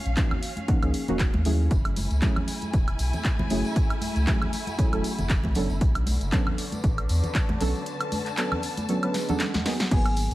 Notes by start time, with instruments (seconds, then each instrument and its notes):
Already playing: synth stab A#3 C#4 D#4 F4 F#4, string section C#4 F5
0.06 sub bass A#1, closed hi-hat
0.17 synth stab F3 A#3 C#4 D#4 F#4, kick, clap, closed hi-hat
0.31 low conga, high woodblock
0.43 open hi-hat
0.56 closed hi-hat, high conga
0.68 synth stab F3 A#3 C#4 D#4 F#4, kick, closed hi-hat
0.82 sub bass C#2, synth stab F3 A#3 C#4 D#4 G#4, closed hi-hat, high woodblock
0.94 open hi-hat
1.08 sub bass D#1, synth stab F3 A#3 C#4 D#4 F#4, closed hi-hat, low conga
1.19 kick, clap, closed hi-hat
1.34 sub bass D#2, high conga, low conga
1.45 synth stab F#3 A3 C#4 E4 G#4, open hi-hat
1.71 sub bass F#1, ambient pad A3 F#5 G#5 E6, string section E4, kick, closed hi-hat, tambourine
1.85 string section A3, closed hi-hat, high woodblock
1.96 string section G#5, open hi-hat, tambourine, high conga
2.11 sub bass C#2, closed hi-hat, tambourine
2.22 synth stab F#3 A3 C#4 E4 G#4, kick, clap, closed hi-hat, tambourine
2.36 low conga, high woodblock
2.48 open hi-hat, tambourine
2.61 closed hi-hat, tambourine, high conga
2.73 sub bass E1, kick, closed hi-hat, tambourine
2.88 closed hi-hat, high woodblock
2.99 sub bass B1, open hi-hat, tambourine
3.13 closed hi-hat, tambourine, low conga
3.25 kick, clap, closed hi-hat
3.39 high conga, low conga
3.50 sub bass F#1, synth stab F#3 A3 C#4 E4 G#4, open hi-hat, tambourine
3.65 tambourine
3.76 kick, closed hi-hat
3.90 closed hi-hat, high woodblock
4.01 open hi-hat, tambourine, high conga
4.16 sub bass C#2, closed hi-hat, tambourine
4.27 synth stab F#3 A3 C#4 E4 G#4, kick, clap, closed hi-hat, tambourine
4.42 low conga, high woodblock
4.53 open hi-hat, tambourine
4.67 closed hi-hat, tambourine, high conga
4.78 synth stab F#3 A3 C#4 E4 G#4, kick, closed hi-hat
4.93 sub bass E1, synth stab F#3 A3 C#4 E4 A4, closed hi-hat, high woodblock
5.04 open hi-hat, tambourine
5.18 sub bass F#1, closed hi-hat, tambourine, low conga
5.30 kick, clap, closed hi-hat, tambourine
5.44 sub bass C#2, high conga, low conga
5.55 sub bass F#1, synth stab F#3 B3 C#4 D4 A4, open hi-hat, tambourine
5.70 sub bass F#1, tambourine
5.81 sub bass B1, string section D3, ambient pad B4 A5 C#6 D6, kick, closed hi-hat, tambourine
5.95 closed hi-hat, high woodblock
6.07 open hi-hat, tambourine, high conga
6.21 sub bass F#1, closed hi-hat, tambourine
6.32 synth stab F#3 B3 C#4 D4 A4, kick, clap, closed hi-hat, tambourine
6.47 low conga, high woodblock
6.58 open hi-hat, tambourine
6.72 closed hi-hat, tambourine, high conga
6.84 sub bass A1, kick, closed hi-hat, tambourine
6.98 closed hi-hat, high woodblock
7.09 sub bass E2, open hi-hat, tambourine
7.22 string section A5, closed hi-hat, tambourine, low conga
7.35 kick, clap, closed hi-hat, tambourine
7.49 high conga, low conga
7.60 sub bass B1, synth stab F#3 B3 C#4 D4 A4, open hi-hat, tambourine
7.75 tambourine
7.86 ambient pad B5, closed hi-hat, tambourine
8.00 closed hi-hat, high woodblock
8.12 open hi-hat, tambourine, high conga
8.26 clap, closed hi-hat, tambourine
8.37 synth stab F#3 B3 C#4 D4 A4, clap, closed hi-hat, tambourine
8.52 low conga, high woodblock
8.63 open hi-hat, tambourine
8.77 closed hi-hat, tambourine, high conga
8.88 synth stab F#3 B3 C#4 D4 A4, closed hi-hat, tambourine, swell
9.03 synth stab F#3 B3 C#4 D4 B4, closed hi-hat, high woodblock
9.14 snare, open hi-hat, tambourine
9.29 synth stab F#3 B3 C#4 D4 A4, closed hi-hat, tambourine, low conga
9.40 vibraphone F#5, snare, clap, closed hi-hat, tambourine
9.54 snare, high conga, low conga
9.66 synth stab F#3 A#3 B3 D#4 G#4, snare, open hi-hat, tambourine
9.79 snare, tambourine
9.91 sub bass G#1, synth stab F#3 A#3 B3 D#4 G#4, vibraphone G#5, kick, closed hi-hat, crash, tambourine
10.05 closed hi-hat, tambourine, high woodblock
10.16 open hi-hat, tambourine
10.31 tambourine